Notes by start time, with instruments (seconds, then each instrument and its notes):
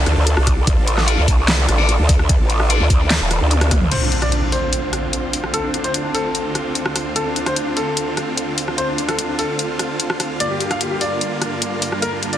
Already playing: supersaw synth D3 D4 F4 A4
0.06 wobble bass D2, cross-stick, closed hi-hat
0.17 wobble bass D2
0.27 closed hi-hat
0.37 wobble bass C2, cross-stick
0.47 kick, cross-stick, open hi-hat
0.67 wobble bass D2, kick, closed hi-hat
0.77 wobble bass A1
0.87 closed hi-hat
0.98 cross-stick, snare
1.07 distorted electric guitar F4 A4 D5, closed hi-hat
1.18 wobble bass D2
1.28 wobble bass C2, kick, open hi-hat
1.48 snare, clap, closed hi-hat
1.69 wobble bass A1, cross-stick, closed hi-hat
1.78 distorted electric guitar F4 A4 D5
1.89 closed hi-hat
1.99 wobble bass D2
2.09 kick, open hi-hat
2.19 cross-stick
2.29 kick, closed hi-hat
2.40 wobble bass A1
2.50 closed hi-hat
2.60 cross-stick
2.70 distorted electric guitar F4 A4 D5, closed hi-hat
2.80 wobble bass D2
2.90 wobble bass D2, kick, open hi-hat
3.10 snare, clap, closed hi-hat
3.21 wobble bass D#1
3.31 cross-stick, closed hi-hat
3.41 wobble bass D2
3.51 closed hi-hat, high tom
3.61 cross-stick, closed hi-hat, high tom
3.71 kick, cross-stick, open hi-hat, mid tom
3.81 wobble bass D2, mid tom
3.91 supersaw synth D2 D3 C4 F4, grand piano C5, closed hi-hat, crash, impact
4.02 grand piano D4
4.12 grand piano D4, closed hi-hat
4.22 grand piano D5, cross-stick, closed hi-hat
4.32 grand piano D4, closed hi-hat
4.42 grand piano D4
4.52 grand piano C5, open hi-hat
4.73 closed hi-hat
4.93 cross-stick, closed hi-hat
5.13 closed hi-hat
5.33 open hi-hat
5.44 cross-stick
5.54 grand piano A4, closed hi-hat
5.64 grand piano D4
5.74 grand piano D4, closed hi-hat
5.84 grand piano C5, closed hi-hat
5.94 grand piano D4, closed hi-hat
6.04 grand piano D4
6.14 grand piano A4, open hi-hat
6.35 closed hi-hat
6.55 cross-stick, closed hi-hat
6.75 closed hi-hat
6.86 cross-stick
6.96 cross-stick, open hi-hat
7.16 grand piano A4, closed hi-hat
7.26 grand piano D4
7.36 grand piano D4, closed hi-hat
7.46 grand piano C5, cross-stick, closed hi-hat
7.56 grand piano D4, closed hi-hat
7.67 grand piano D4
7.77 grand piano A4, open hi-hat
7.97 closed hi-hat
8.17 cross-stick, closed hi-hat
8.37 closed hi-hat
8.58 open hi-hat
8.68 cross-stick
8.78 grand piano C5, closed hi-hat
8.88 grand piano D4
8.98 grand piano D4, closed hi-hat
9.08 grand piano A4, cross-stick, closed hi-hat
9.19 grand piano D4, closed hi-hat
9.29 grand piano D4
9.39 grand piano A4, open hi-hat
9.59 closed hi-hat
9.79 cross-stick, closed hi-hat
10.00 closed hi-hat
10.10 cross-stick
10.20 cross-stick, open hi-hat
10.40 supersaw synth G2 A#3, grand piano D5, closed hi-hat
10.50 grand piano G4
10.60 grand piano G4, closed hi-hat
10.71 grand piano F5, cross-stick, closed hi-hat
10.81 grand piano G4, closed hi-hat
10.91 grand piano G4
11.01 grand piano D5, open hi-hat
11.21 closed hi-hat
11.42 cross-stick, closed hi-hat
11.62 closed hi-hat
11.82 open hi-hat
11.92 cross-stick
12.02 grand piano A#4, closed hi-hat
12.13 grand piano D4
12.23 grand piano D4, closed hi-hat
12.33 grand piano D5, closed hi-hat